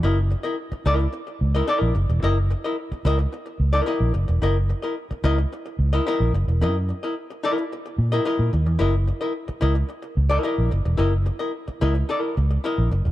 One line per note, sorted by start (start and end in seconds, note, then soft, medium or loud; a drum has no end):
0.03 0.34 F#1 loud
0.03 0.18 E4 medium
0.03 0.18 A#4 medium
0.03 0.18 D#5 medium
0.30 muted hollow-body jazz guitar stroke soft
0.43 0.56 E4 medium
0.43 0.55 A#4 medium
0.43 0.55 D#5 medium
0.72 muted fingered electric bass stroke medium
0.72 muted hollow-body jazz guitar stroke soft
0.86 1.06 C#2 loud
0.86 1.06 E4 medium
0.86 0.99 A#4 loud
0.86 0.98 D#5 loud
0.99 muted hollow-body jazz guitar stroke soft
1.13 muted hollow-body jazz guitar stroke soft
1.27 muted hollow-body jazz guitar stroke soft
1.41 1.61 C#2 loud
1.55 1.66 E4 medium
1.55 1.67 A#4 medium
1.55 1.68 D#5 medium
1.67 1.78 D#4 medium
1.67 1.79 A4 medium
1.67 1.94 D#5 loud
1.78 1.92 A#1 medium
1.78 1.93 E4 medium
1.78 1.93 A#4 medium
1.95 2.05 F#1 medium
1.95 muted hollow-body jazz guitar stroke soft
2.09 2.19 E1 medium
2.09 muted hollow-body jazz guitar stroke soft
2.23 2.53 F#1 loud
2.23 2.37 E4 medium
2.23 2.37 A#4 medium
2.23 2.38 D#5 loud
2.50 muted hollow-body jazz guitar stroke medium
2.64 2.76 E4 medium
2.64 2.76 A#4 medium
2.64 2.75 D#5 medium
2.92 muted fingered electric bass stroke soft
2.92 muted hollow-body jazz guitar stroke soft
3.05 3.25 C#2 loud
3.05 3.19 E4 medium
3.05 3.19 A#4 loud
3.05 3.17 D#5 loud
3.19 muted hollow-body jazz guitar stroke soft
3.33 muted hollow-body jazz guitar stroke soft
3.46 muted hollow-body jazz guitar stroke soft
3.60 3.80 C#2 loud
3.73 3.85 E4 medium
3.73 3.86 A#4 medium
3.73 3.87 D#5 loud
3.86 4.12 E4 medium
3.86 4.12 A#4 medium
3.86 4.13 D#5 medium
4.00 4.11 A#1 medium
4.14 4.24 F#1 medium
4.14 muted hollow-body jazz guitar stroke soft
4.28 4.39 E1 medium
4.28 muted hollow-body jazz guitar stroke medium
4.42 4.72 F#1 loud
4.42 4.56 E4 medium
4.42 4.57 A#4 medium
4.42 4.57 D#5 medium
4.69 muted hollow-body jazz guitar stroke soft
4.82 4.95 E4 medium
4.82 4.94 A#4 medium
4.82 4.94 D#5 medium
5.11 muted hollow-body jazz guitar stroke soft
5.11 muted fingered electric bass stroke soft
5.24 5.44 C#2 loud
5.24 5.38 E4 loud
5.24 5.38 A#4 loud
5.24 5.37 D#5 loud
5.38 muted hollow-body jazz guitar stroke medium
5.53 muted hollow-body jazz guitar stroke soft
5.66 muted hollow-body jazz guitar stroke medium
5.79 5.99 C#2 loud
5.93 6.05 E4 medium
5.93 6.06 A#4 medium
5.93 6.07 D#5 loud
6.07 6.32 E4 medium
6.07 6.32 A#4 loud
6.07 6.32 D#5 medium
6.20 6.30 A#1 medium
6.33 6.43 F#1 medium
6.33 muted hollow-body jazz guitar stroke soft
6.48 6.63 E1 medium
6.48 muted hollow-body jazz guitar stroke soft
6.61 6.91 F#2 loud
6.61 6.75 E4 medium
6.61 6.76 A#4 medium
6.61 6.76 D#5 loud
6.89 muted hollow-body jazz guitar stroke soft
7.03 7.14 E4 medium
7.03 7.14 A#4 medium
7.03 7.14 D#5 medium
7.30 muted hollow-body jazz guitar stroke soft
7.43 7.63 E4 medium
7.43 7.58 A#4 medium
7.43 7.57 D#5 loud
7.58 muted hollow-body jazz guitar stroke soft
7.72 muted hollow-body jazz guitar stroke soft
7.86 muted hollow-body jazz guitar stroke soft
7.98 8.18 A#2 loud
8.12 8.24 E4 medium
8.12 8.25 A#4 medium
8.12 8.25 D#5 loud
8.25 8.51 E4 medium
8.25 8.51 A#4 medium
8.25 8.51 D#5 medium
8.39 8.49 A#2 medium
8.53 8.66 D#2 medium
8.53 muted hollow-body jazz guitar stroke soft
8.66 8.76 E2 medium
8.66 muted hollow-body jazz guitar stroke soft
8.79 9.10 F#1 loud
8.79 8.94 E4 loud
8.79 8.94 A#4 medium
8.79 8.95 D#5 medium
9.08 muted hollow-body jazz guitar stroke soft
9.21 9.33 E4 medium
9.21 9.32 A#4 medium
9.21 9.32 D#5 medium
9.48 muted hollow-body jazz guitar stroke soft
9.48 muted fingered electric bass stroke soft
9.61 9.82 C#2 medium
9.61 9.76 E4 medium
9.61 9.75 A#4 medium
9.61 9.74 D#5 medium
9.75 muted hollow-body jazz guitar stroke medium
9.89 muted hollow-body jazz guitar stroke soft
10.03 muted hollow-body jazz guitar stroke medium
10.17 10.37 C#2 loud
10.30 10.42 E4 medium
10.30 10.43 A#4 medium
10.30 10.44 D#5 loud
10.43 10.69 E4 medium
10.43 10.70 A#4 medium
10.43 10.70 D#5 medium
10.58 10.68 A#1 medium
10.71 10.82 F#1 medium
10.71 muted hollow-body jazz guitar stroke soft
10.85 10.95 E1 medium
10.85 muted hollow-body jazz guitar stroke soft
10.97 11.29 F#1 loud
10.97 11.12 E4 medium
10.97 11.13 A#4 medium
10.97 11.13 D#5 medium
11.26 muted hollow-body jazz guitar stroke soft
11.39 11.51 E4 medium
11.39 11.51 A#4 medium
11.39 11.51 D#5 medium
11.68 muted hollow-body jazz guitar stroke soft
11.68 muted fingered electric bass stroke soft
11.81 12.02 C#2 loud
11.81 11.95 E4 medium
11.81 11.95 A#4 medium
11.81 11.94 D#5 medium
11.95 muted hollow-body jazz guitar stroke soft
12.09 12.20 D#4 medium
12.09 12.34 A#4 medium
12.09 12.35 D#5 medium
12.20 12.34 E4 medium
12.37 12.57 C#2 medium
12.37 muted hollow-body jazz guitar stroke soft
12.51 muted hollow-body jazz guitar stroke soft
12.64 12.89 E4 medium
12.64 12.89 A#4 medium
12.64 12.90 D#5 medium
12.78 12.88 A#1 medium
12.91 13.01 F#1 loud
12.91 muted hollow-body jazz guitar stroke soft
13.05 13.12 E1 medium
13.05 muted hollow-body jazz guitar stroke soft